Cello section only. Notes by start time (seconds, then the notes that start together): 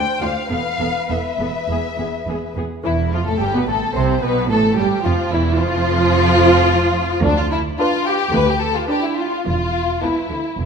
0.20 D2
0.50 E2
0.79 E2
1.09 E2
1.38 E2
1.67 E2
1.97 E2
2.26 E2
2.55 E2
2.84 E2
3.11 F2
3.26 A2
3.39 G2
3.54 B2
3.67 A2
3.94 C3
4.22 B2
4.50 A2
4.77 G2
5.05 F2
5.32 E2
5.60 F2
7.24 D2
8.33 D2
9.45 E2
10.01 C2
10.29 D2
10.57 E2